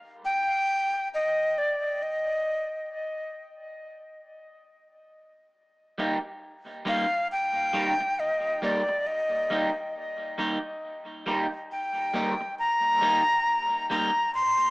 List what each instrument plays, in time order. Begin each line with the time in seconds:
0.25 flute G5
1.14 flute D#5
1.58 flute D5
2.03 flute D#5
5.98 clean electric guitar G3 A#3 D#4 G4
6.85 clean electric guitar G3 A#3 D#4 G4, flute F5
7.32 flute G5
7.73 clean electric guitar G3 A#3 D#4 G4
8.01 muted clean electric guitar stroke
8.20 flute D#5
8.62 clean electric guitar G3 A#3 D#4 G4, flute D5
8.89 muted clean electric guitar stroke
9.07 flute D#5
9.50 clean electric guitar G3 A#3 D#4 G4
10.38 clean electric guitar G3 A#3 D#4 G4
11.26 clean electric guitar G3 A#3 D#4 G4
11.72 flute G5
12.14 clean electric guitar G3 A#3 D#4 G4
12.41 muted clean electric guitar stroke
12.59 flute A#5
13.01 clean electric guitar G3 A#3 D#4 G4
13.90 clean electric guitar G3 A#3 D#4 G4, flute A#5
14.34 flute C6